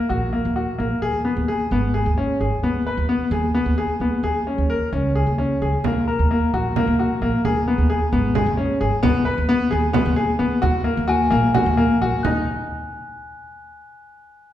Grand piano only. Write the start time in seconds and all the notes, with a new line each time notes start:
0.09 F#4
0.33 A#3
0.56 F#4
0.78 A#3
1.02 G#4
1.25 B3
1.48 G#4
1.72 B3
1.94 G#4
2.18 C#4
2.40 G#4
2.63 B3
2.87 B4
3.09 B3
3.32 G#4
3.54 B3
3.78 G#4
4.01 B3
4.24 G#4
4.47 C#4
4.70 A#4
4.93 C#4
5.15 G#4
5.38 C#4
5.62 G#4
5.85 A#3
6.08 A#4
6.31 A#3
6.54 F#4
6.77 A#3
6.99 F#4
7.22 A#3
7.45 G#4
7.68 B3
7.90 G#4
8.13 B3
8.35 G#4
8.57 C#4
8.81 G#4
9.03 B3
9.25 B4
9.49 B3
9.71 G#4
9.93 B3
10.16 G#4
10.39 B3
10.62 F#4
10.84 A#3
11.08 F#4
11.30 A#3
11.54 F#4
11.77 A#3
12.02 F#4
12.24 D#4